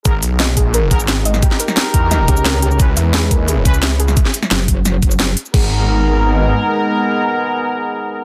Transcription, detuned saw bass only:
X:1
M:4/4
L:1/8
Q:1/4=175
K:G#m
V:1 name="Detuned saw bass" clef=bass
G,,, B,,,2 A,,,2 G,,,3 | z3 E,,2 z3 | C,, E,,2 D,,2 C,,3 | z8 |
G,,,6 z2 | z8 |]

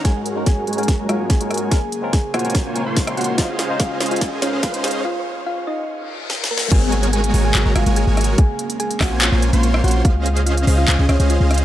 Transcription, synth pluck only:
X:1
M:4/4
L:1/16
Q:1/4=144
K:Abmix
V:1 name="Synth pluck"
[Aa]3 z [Aa]2 z [Aa]2 z [Ff] z [Aa]3 z | [Aa]3 z [Aa] z [Gg] z6 z [Gg] z | [Ff]3 z [Ff]2 z [Ff]2 z [Dd] z [Ff]3 z | [Ff]3 z [Ff] z [Ee] z6 z [B,B] z |
[Aa]3 z [Aa]2 z [Aa]2 z [Ff] z [Aa]3 z | [Aa]3 z [Aa] z [Gg] z6 z [Gg] z | [Ff]3 z [Ff]2 z [Ff]2 z [Dd] z [Ff]3 z |]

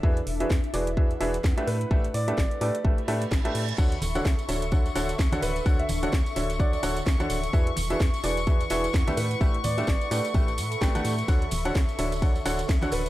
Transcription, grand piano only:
X:1
M:4/4
L:1/16
Q:"Swing 16ths" 1/4=128
K:D
V:1 name="Grand piano"
z12 z2 B2 | z2 d6 z8 | z12 z2 B2 | z e2 z4 z d d z6 |
z12 z2 B2 | z2 d6 z8 | z12 z2 B2 |]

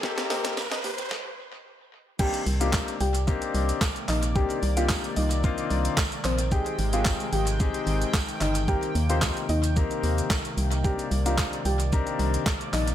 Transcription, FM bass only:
X:1
M:4/4
L:1/16
Q:1/4=111
K:Cm
V:1 name="FM bass" clef=bass
A,,,2 E,, E,,3 E,,2 z8 | z2 C,,4 C,,4 C,,2 z2 B,,,2- | B,,,2 C,,4 C,,4 C,,2 z2 B,,,2- | B,,,2 A,,,4 A,,,4 A,,,2 z2 G,,,2- |
G,,,2 E,,4 E,,4 E,,2 z2 C,,2- | C,,2 C,,4 C,,4 C,,2 z2 B,,,2 |]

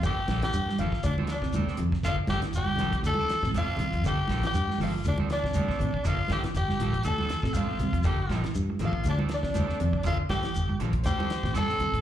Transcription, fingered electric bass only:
X:1
M:4/4
L:1/16
Q:"Swing 16ths" 1/4=120
K:Gdor
V:1 name="Fingered electric bass" clef=bass
G,,,2 B,,, z G,,2 G,,,2 D,,4 D,, z F,, z | G,,, z G,,, z G,,,2 C,,2 D,,2 z A,,,3 C,, F,, | G,,,2 B,,, z G,,2 G,,,2 D,,4 D,, z A,,, z | G,,, z G,,, z G,,,2 B,,,2 D,,2 z A,,,3 C,, F,, |
G,,,2 B,,, z G,,2 A,,,2 D,,4 D,, z F,, z | G,,, z G,,, z G,,,2 B,,,2 D,,2 z A,,,3 C,, A,,, |]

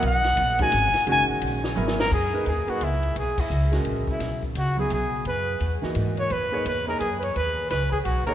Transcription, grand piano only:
X:1
M:3/4
L:1/8
Q:"Swing" 1/4=172
K:F#mix
V:1 name="Grand piano"
z3 [D,G,CF] z2 | [D,G,CF]3 z [F,B,EA] z | z [A,DGB] z [A,DGB] z2 | z3 [G,CFA]3 |
z3 [F,B,EG]3 | z3 [E,A,DF]3 | z [A,DGc] z [A,DGd] z2 | z4 z [A,DGc] |]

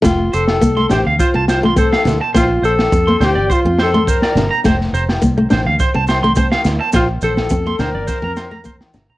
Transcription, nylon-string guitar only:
X:1
M:4/4
L:1/16
Q:1/4=104
K:F
V:1 name="Nylon-string guitar"
A,2 z2 B, A, D2 z C2 A, C2 E2 | B,2 z3 B, D2 z C2 A, z2 D2 | A,2 z2 B, A, D2 z C2 A, C2 E2 | z4 C B, D2 z C2 A, B,2 D2 |]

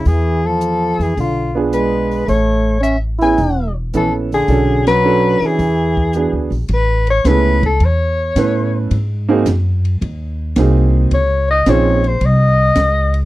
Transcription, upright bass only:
X:1
M:4/4
L:1/8
Q:"Swing" 1/4=108
K:A
V:1 name="Upright bass" clef=bass
E,,3 =F,, B,,,4 | A,,,4 E,,,2 _B,,,2 | B,,,3 z E,,2- (3E,, D,, _B,,, | A,,,2 C,,2 E,,2 A,,2 |
G,,2 F,,2 ^D,,2 ^B,,,2 | C,,2 _B,,,2 ^B,,,2 C,,2 |]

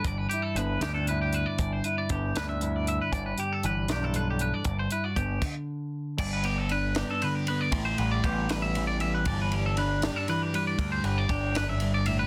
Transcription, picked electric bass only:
X:1
M:6/8
L:1/8
Q:3/8=78
K:G
V:1 name="Picked electric bass" clef=bass
G,,, z G,,, D,,3 | G,,, z G,,, D,,3 | G,,, z G,,, B,,,3 | G,,, z G,,, z3 |
G,,,4 z2 | A,,, A,,, A,,,4 | G,,,4 z2 | D,, G,,, G,,,4 |]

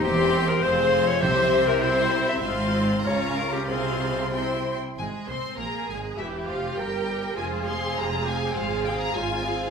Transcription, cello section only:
X:1
M:2/4
L:1/8
Q:1/4=100
K:Fm
V:1 name="Cello section"
=E,,2 F,,2 | C,4 | A,,2 D,2 | C,3 z |
z2 A2 | G2 B2 | A4 | A2 F2 |]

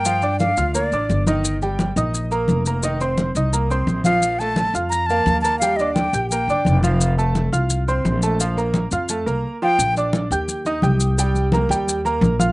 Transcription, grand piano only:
X:1
M:4/4
L:1/8
Q:1/4=173
K:Bb
V:1 name="Grand piano"
[F,Ff] [Ddd']2 [Fff'] [B,Bb] [Ddd']2 [E,Ee]- | [E,Ee] [G,Gg]2 [Eee']2 [B,Bb]2 [B,Bb] | [E,Ee] [Ccc']2 [Eee'] [B,Bb] [Ccc']2 [F,Ff]- | [F,Ff] [A,Aa]2 [Fff']2 [B,Bf]2 [B,Bb] |
[G,Gg] [Ddd']2 [Ggg'] [B,Bb] [Ddd']2 [F,Ff]- | [F,Ff] [A,Aa]2 [Fff']2 [Ccc']2 [A,Aa] | [F,Ff] [B,Bb]2 [Fff'] [A,Aa] [B,Bb]2 [F,Ff] | z [Ddd']2 [Ggg']2 [Eee'] [Ggg']2 |
[G,Gg]2 [B,Bb] [G,Gg]2 [B,Bb]2 [Fff'] |]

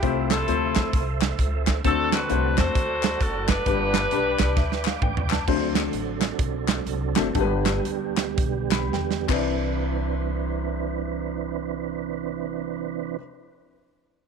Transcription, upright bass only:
X:1
M:4/4
L:1/8
Q:"Swing" 1/4=129
K:C
V:1 name="Upright bass" clef=bass
C,,2 D,,2 C,,2 _D,,2 | D,,2 C,, E,, D,,2 ^F,,,2 | G,,,2 B,,, C,, D,,2 _D,,2 | D,,2 A,,,2 B,,,2 C,, ^F,,, |
G,,,2 D,,2 B,,,2 E,, C,,- | C,,8- | C,,8 |]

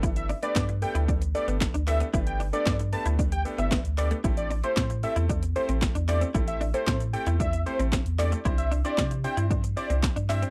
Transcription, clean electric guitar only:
X:1
M:4/4
L:1/16
Q:1/4=114
K:Am
V:1 name="Clean electric guitar"
E z D z B, z2 E D z2 B, z D z B, | E z D z B, z2 E D z2 B, B, z2 A, | E z D z C z2 E D z2 C z D z C | E z D z C z2 E D z2 C C z2 A, |
E z D z C z2 E D z2 C z D z C |]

